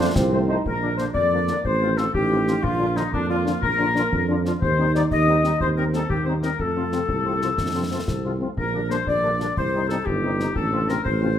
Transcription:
Already playing: F3 D4 F4 F5
0.00 F3 A3 C4
0.15 C2 C4, concert bass drum, snare
0.32 F3 A3 C4 C5
0.47 F3 A3 C4 D#4 C5
0.65 A#1 D4 A#4, concert bass drum
0.82 D3 F3 A#3 D4
0.97 D3 F3 A#3 D4 C5, snare
1.14 F2 A#3 D5, concert bass drum
1.32 D3 F3 A#3 D4
1.48 D3 F3 A#3 D4, snare
1.64 A1 C4 C5, concert bass drum
1.82 D#3 F3 C4 F4
1.98 D#3 F3 C4 F4 A4, snare
2.14 A1 D#4 G4, concert bass drum
2.30 D#3 F3 C4 F4
2.47 D#3 F3 C4 F4, snare
2.63 A#1 D4 F4, concert bass drum
2.79 D3 F3 D4 F4
2.95 D3 F3 D4 D#4 F4, snare
3.12 F2 A#3 D4, concert bass drum
3.29 D3 F3 D4 F4
3.45 D3 F3 D4 F4, snare
3.62 A#1 A#4, concert bass drum
3.79 D3 F3 D4 F4
3.95 D3 F3 D4 F4, snare
4.12 F2 D4, concert bass drum
4.29 D3 F3 D4 F4
4.45 D3 F3 D4 F4, snare
4.61 D#2 D#4 C5, concert bass drum
4.78 D#3 G3 C4 D#4
4.95 D#3 G3 C4 D#4 D5, snare
5.11 D#2 D#5, concert bass drum
5.28 D#3 G3 C4 D#4
5.43 D#3 G3 C4 D#4, snare
5.60 D#2 C4 C5, concert bass drum
5.77 D#3 G3 C4 D#4 A#4
5.93 D#3 G3 C4 D#4 A4, snare
6.10 D#2 A#3 G4, concert bass drum
6.25 D#3 G3 C4 D#4 C5
6.42 D#3 G3 C4 D#4 A#4, snare
6.59 F2 A3 A4, concert bass drum
6.76 C3 F3 C4 F4
6.92 C3 F3 C4 F4, snare
7.08 C2 A3, concert bass drum
7.25 C3 F3 C4 F4
7.41 C3 F3 C4 F4, snare
7.57 F2 D4, concert bass drum, snare
7.75 C3 F3 C4 F4
7.91 C3 F3 C4 F4
8.07 C2 C4, concert bass drum, snare
8.24 C3 F3 C4 F4
8.40 C3 F3 A3 C4 F4
8.57 A#1 D4 A#4, concert bass drum
8.73 D3 G3 A#3 D4
8.90 D3 G3 A#3 D4 C5, snare
9.07 A#1 D5, concert bass drum
9.23 D3 G3 A#3 D4
9.39 D3 G3 A#3 D4, snare
9.56 C2 C4 C5, concert bass drum
9.73 C3 G3 C4 D#4
9.89 C3 G3 C4 D#4 A4, snare
10.05 G1 D#4 G4, concert bass drum
10.23 C3 G3 C4 D#4
10.39 C3 G3 C4 D#4, snare
10.55 A1 D4 A4, concert bass drum
10.72 C3 F3 C4 F4
10.88 C3 F3 C4 F4 A#4, snare
11.04 A1 C4 C5, concert bass drum
11.21 C3 F3 C4 F4

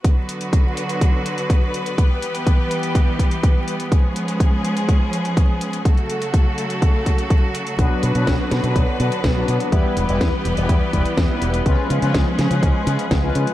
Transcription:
0.04 D3 F#3 B3 F#4 B4, kick, closed hi-hat
0.29 closed hi-hat
0.41 closed hi-hat
0.53 kick, closed hi-hat
0.77 closed hi-hat
0.89 closed hi-hat
1.01 kick, closed hi-hat
1.26 closed hi-hat
1.38 closed hi-hat
1.50 kick, closed hi-hat
1.74 closed hi-hat
1.86 closed hi-hat
1.98 E3 G3 G4, kick, closed hi-hat
2.22 closed hi-hat
2.35 closed hi-hat
2.47 kick, closed hi-hat
2.71 closed hi-hat
2.83 closed hi-hat
2.95 kick, closed hi-hat
3.19 kick, closed hi-hat
3.31 closed hi-hat
3.43 kick, closed hi-hat
3.68 closed hi-hat
3.80 closed hi-hat
3.92 F3 G#3 C#4 G#4, kick, closed hi-hat
4.16 closed hi-hat
4.28 closed hi-hat
4.40 kick, closed hi-hat
4.64 closed hi-hat
4.77 closed hi-hat
4.88 kick, closed hi-hat
5.13 closed hi-hat
5.25 closed hi-hat
5.37 kick, closed hi-hat
5.61 closed hi-hat
5.73 closed hi-hat
5.85 C#3 F#3 A3 F#4 A4, kick, closed hi-hat
5.97 closed hi-hat
6.10 closed hi-hat
6.22 closed hi-hat
6.34 kick, closed hi-hat
6.58 closed hi-hat
6.70 closed hi-hat
6.82 kick, closed hi-hat
7.06 kick, closed hi-hat
7.18 closed hi-hat
7.30 kick, closed hi-hat
7.55 closed hi-hat
7.67 closed hi-hat
7.79 B1 D3 F#3 B3 D4 B4, kick, closed hi-hat
8.03 B2, closed hi-hat
8.15 B2 F#3 B3 D4 B4, closed hi-hat
8.27 B1, kick, snare, closed hi-hat
8.51 B2, snare, closed hi-hat
8.63 B2 F#3 B3 D4 B4, closed hi-hat
8.76 B1, kick, closed hi-hat
9.00 B2 F#3 B3 D4 B4, closed hi-hat
9.12 closed hi-hat
9.24 B1, kick, snare, closed hi-hat
9.36 F#3 B3 D4 B4
9.48 B2, closed hi-hat
9.60 closed hi-hat
9.72 E2 E3 G3 B3 E4 G4 B4, kick, closed hi-hat
9.97 E1, closed hi-hat
10.08 E1 G3 B3 E4 B4, closed hi-hat
10.21 E2, kick, snare, closed hi-hat
10.45 E1, closed hi-hat
10.57 E1 G3 B3 E4 B4, closed hi-hat
10.69 E2, kick, closed hi-hat
10.93 E1 G3 B3 E4 B4, kick, closed hi-hat
11.05 closed hi-hat
11.17 E2, kick, snare, closed hi-hat
11.30 G3 B3 E4 B4
11.42 E1, closed hi-hat
11.54 closed hi-hat
11.66 C#2 F3 G#3 C#4 F4 G#4 B4, kick, closed hi-hat
11.90 C#3, closed hi-hat
12.02 C#3 G#3 C#4 F4 B4, closed hi-hat
12.14 C#2, kick, snare, closed hi-hat
12.39 C#3, snare, closed hi-hat
12.50 C#3 G#3 C#4 F4 B4, closed hi-hat
12.63 C#2, kick, closed hi-hat
12.87 C#3 G#3 C#4 F4 B4, closed hi-hat
12.99 closed hi-hat
13.11 C#2, kick, snare, closed hi-hat
13.23 G#3 C#4 F4 B4
13.35 C#3, closed hi-hat
13.47 closed hi-hat

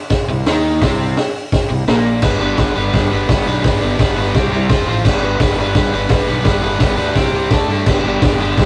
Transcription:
0.10 kick, snare, open hi-hat
0.28 C2 C3
0.46 D#2 D#3 D#4, snare, open hi-hat
0.82 C2 C3 C4, kick, snare, open hi-hat
1.17 snare, open hi-hat
1.52 kick, snare, open hi-hat
1.70 C2 C3
1.88 A#1 A#2 A#3, snare, open hi-hat
2.22 G1 G3 B3 D4 B4, kick, snare, crash
2.40 G1 G3 B3 D4 B4
2.57 G1 G3 B3 D4 B4, kick, snare, open hi-hat
2.74 G1 G3 B3 D4 B4
2.92 G2 G3 B3 D4 B4, kick, snare, open hi-hat
3.11 G1 G3 B3 D4 B4
3.28 G1 G3 B3 D4 B4, kick, snare, open hi-hat
3.46 B1 G3 B3 D4 B4
3.62 G1 G3 B3 D4 B4, kick, snare, open hi-hat
3.80 G1 G3 B3 D4 B4
3.99 G1 G3 B3 D4 B4, kick, snare, open hi-hat
4.16 G1 G3 B3 D4 B4
4.34 C2 C3 G3 C4 G4, kick, snare, open hi-hat
4.51 C2 C3 G3 C4 G4
4.69 F1 F3 C4 F4 C5, kick, snare, open hi-hat
4.87 A1 F3 C4 F4 C5
5.04 G1 G3 B3 D4 B4, kick, snare, crash
5.22 G1 G3 B3 D4 B4
5.40 G1 G3 B3 D4 B4, kick, snare, open hi-hat
5.57 G1 G3 B3 D4 B4
5.75 G2 G3 B3 D4 B4, kick, snare, open hi-hat
5.92 G1 G3 B3 D4 B4
6.09 G1 G3 B3 D4, kick, snare, open hi-hat
6.13 B4
6.26 B1 G3 B3 D4 B4
6.43 G1 G3 B3 D4 B4, kick, snare, open hi-hat
6.61 G1 G3 B3 D4 B4
6.79 G1 G3 B3 D4 B4, kick, snare, open hi-hat
6.97 D2 G3 B3 D4 B4
7.15 C2 C3 G3 C4 G4, kick, snare, open hi-hat
7.33 C2 C3 G3 C4 G4
7.50 D2 D3 A3 D4 A4, kick, snare, open hi-hat
7.68 G2 D3 A3 D4 A4
7.86 G1 G2 D3 G3 B3 D4 G4, kick, snare, crash
8.03 G1 G2 D3 G3 B3 D4
8.08 G4
8.21 G1 G2 D3 G3 B3 D4 G4, kick, snare, open hi-hat
8.38 G1 G2 D3 G3 B3 D4 G4
8.57 G2 D3 G3 B3 D4, kick, snare, open hi-hat
8.61 G4

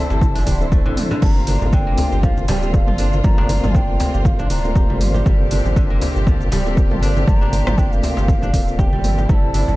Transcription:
Already playing: C3 E3 G3 C4 D4 E4 A4 C5 A5
0.10 G1 G4, djembe slap, shaker
0.21 kick, high conga, shaker
0.35 D4, open hi-hat, muted conga, low conga, shaker
0.46 D1 D4, kick, open hi-hat, high conga, djembe tone, shaker
0.61 C4 E4 A4, muted conga, shaker
0.72 A3, kick, djembe bass, shaker
0.86 G1 D3, muted conga, high conga, low conga
0.97 mid tom, open hi-hat, shaker
1.11 D3, low conga, shaker
1.22 G1 A#2 C3 G3 A3 A#3 C4 F4 A#5, kick, crash, muted conga, high conga, shaker
1.47 D4, open hi-hat, muted conga, high conga, shaker
1.62 G1, djembe tone, low conga, shaker
1.73 D3 G5, kick, muted conga, shaker
1.87 A#3
1.98 open hi-hat, djembe slap, muted conga, djembe tone, djembe bass, shaker
2.12 G1 G4, shaker
2.23 F3 F5, kick, djembe bass, shaker
2.37 muted conga, shaker
2.48 D1 G3 A5, open hi-hat, djembe slap, high conga, low conga, shaker
2.52 G5
2.62 G3 A#3 C4 F4 A4, muted conga, shaker
2.74 F5, kick, djembe tone, shaker
2.87 G1 F4, mid tom, muted conga
2.98 D4, open hi-hat, high conga, shaker
3.13 high conga, shaker
3.24 G1 F3 A3 A#3 C4 F4 A#5, kick, mid tom, muted conga, high conga, shaker
3.38 D4, djembe slap, djembe tone
3.49 open hi-hat, muted conga, high conga, shaker
3.63 G1 F4, mid tom, djembe tone, low conga, shaker
3.75 D4 G5, kick, muted conga, shaker
4.00 C4, open hi-hat, djembe slap, muted conga, djembe bass, shaker
4.14 G1 G4, shaker
4.25 F5, kick, high conga, shaker
4.39 D4, muted conga, low conga, shaker
4.50 D1 D4 A#5, open hi-hat, high conga, shaker
4.64 A3 A#3 C4 F4, muted conga, shaker
4.75 G4, kick, djembe bass, shaker
4.89 G1 G3, muted conga, high conga
5.01 mid tom, open hi-hat, shaker
5.14 G4, low conga, shaker
5.26 G1 G3 A#3 C4 G4 A4, kick, muted conga, high conga, shaker
5.51 D4, open hi-hat, muted conga, high conga, shaker
5.65 G1, djembe tone, low conga, shaker
5.76 D3, kick, muted conga, shaker
5.90 A#3
6.01 open hi-hat, muted conga, djembe slap, djembe tone, djembe bass, shaker
6.16 G1 G4, shaker
6.27 F3, kick, djembe bass, shaker
6.41 muted conga, shaker
6.52 D1 G3, open hi-hat, djembe slap, high conga, low conga, shaker
6.66 G3 A#3 C4 F4 A4, muted conga, shaker
6.77 kick, djembe tone, shaker
6.91 G1 F4, mid tom, muted conga
7.02 D4, open hi-hat, high conga, shaker
7.17 high conga, shaker
7.27 G1 F3 A#5, kick, mid tom, muted conga, high conga, shaker
7.41 D4, djembe slap, djembe tone
7.53 open hi-hat, muted conga, high conga, shaker
7.67 G1 F4, cross-stick, mid tom, djembe tone, low conga, shaker
7.78 D4 G5, kick, muted conga, shaker
7.92 F5, shaker
8.03 C4 F5, open hi-hat, muted conga, djembe slap, djembe bass, shaker
8.17 G1 G4, djembe slap, shaker
8.28 kick, high conga, shaker
8.42 D4, muted conga, low conga, shaker
8.53 D1 A#3 C4 D4 F4 A4, kick, open hi-hat, high conga, shaker
8.68 muted conga, shaker
8.78 G4 G5, kick, djembe bass, shaker
8.93 G1 G3, muted conga, high conga
9.04 A#3 C4 F4 A4, mid tom, open hi-hat, shaker
9.18 G4, low conga, shaker
9.29 G1 C3 E3 G3 A3 C4 E4 A4 A#5, kick, muted conga, high conga, shaker
9.34 A5
9.54 D4, open hi-hat, muted conga, high conga, shaker
9.68 G1, djembe tone, low conga, shaker

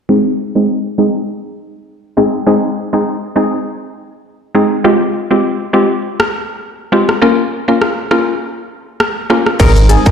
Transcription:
0.09 G#3 C4 D#4 G#4
0.55 G#3 C4 D#4 G#4
0.98 G#3 C4 D#4 G#4
2.17 G#3 C4 D#4 G#4
2.46 G#3 C4 D#4 G#4
2.93 G#3 C4 D#4 G#4
3.36 G#3 C4 D#4 G#4
4.55 G#3 C4 D#4 G#4
4.84 G#3 C4 F4 G4
5.31 G#3 C4 F4 G4
5.73 G#3 C4 F4 G4
6.20 cross-stick
6.92 G#3 C4 F4 G4
7.09 cross-stick
7.22 A#3 C#4 F4 A#4
7.68 A#3 C#4 F4 A#4
7.82 cross-stick
8.11 A#3 C#4 F4 A#4, cross-stick
9.00 cross-stick
9.30 A#3 C#4 F4 A#4, cross-stick
9.46 cross-stick
9.60 G#1 G#3 C4 D#4 G#4 A#4, kick, crash, shaker
9.76 shaker
9.89 G#4, closed hi-hat, shaker
10.06 G1 G#3 C4 D#4 G#4 A#4, kick, shaker

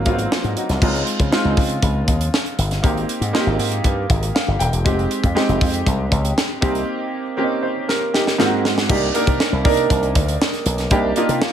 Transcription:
Already playing: F#3 A#3 C4 F4
0.06 G#1 F#3 A#3 B3 F4, kick, closed hi-hat
0.13 C4
0.19 closed hi-hat
0.32 F4, snare
0.44 G#2, closed hi-hat
0.57 D#4 F#4, closed hi-hat
0.69 C2, snare, closed hi-hat
0.82 C#2 G#3 C4 D#4 F4, kick, crash
0.95 closed hi-hat
1.07 closed hi-hat
1.20 C#3, kick, closed hi-hat
1.32 G#3 C4 D#4 F4, snare
1.45 C#2
1.57 C#3, kick, open hi-hat
1.69 closed hi-hat
1.82 C#2, kick, closed hi-hat
2.08 D#2, kick, closed hi-hat
2.21 closed hi-hat
2.34 snare
2.46 closed hi-hat
2.58 G1, closed hi-hat
2.71 snare, closed hi-hat
2.83 G#1 A#3 C4 D#4 G4, kick, closed hi-hat
2.97 closed hi-hat
3.09 closed hi-hat
3.21 G#2, closed hi-hat
3.33 A#3 C4 D#4 F4, snare
3.40 G4
3.46 G#1
3.59 G#2, open hi-hat
3.72 closed hi-hat
3.84 G2, kick, closed hi-hat
4.10 G#1, kick, closed hi-hat
4.23 closed hi-hat
4.35 F5, snare
4.48 G1
4.59 D#1 G5, closed hi-hat
4.73 E1, closed hi-hat
4.85 F1 G#3 C4 D#4 G4, kick, closed hi-hat
4.99 closed hi-hat
5.11 closed hi-hat
5.24 F2, kick, closed hi-hat
5.35 G#3 C4 D#4 G4, snare
5.49 F1, closed hi-hat
5.61 F2, kick, open hi-hat
5.74 closed hi-hat
5.86 C2, kick, closed hi-hat
6.12 C#2, kick, closed hi-hat
6.25 closed hi-hat
6.38 snare
6.61 C2 A#3 C4 D#4 G4, kick, closed hi-hat
6.75 closed hi-hat
7.37 A#3 C4 C#4 G4
7.44 D#4
7.63 C5
7.89 G4 A#4, snare
8.14 D#4 G4, snare
8.27 snare
8.38 G#2 A#3 C4 D#4 F4, snare
8.46 F#4
8.65 snare
8.78 snare
8.89 C2 A#3 D4 D#4 G4, kick, crash
9.14 A#3 D4 D#4 A#4, closed hi-hat
9.27 C3, kick, closed hi-hat
9.40 snare
9.52 C2
9.64 C3 A#3 D4 D#4 A#4, kick, open hi-hat
9.77 closed hi-hat
9.90 C2, kick, closed hi-hat
10.03 closed hi-hat
10.15 D2, kick, closed hi-hat
10.28 closed hi-hat
10.42 snare
10.54 snare, closed hi-hat
10.66 B1, closed hi-hat
10.78 snare, closed hi-hat
10.91 C2 A#3 D4 D#4 G4, kick, closed hi-hat
11.16 A#3 D4 D#4 F4, closed hi-hat
11.29 C3, closed hi-hat
11.42 snare

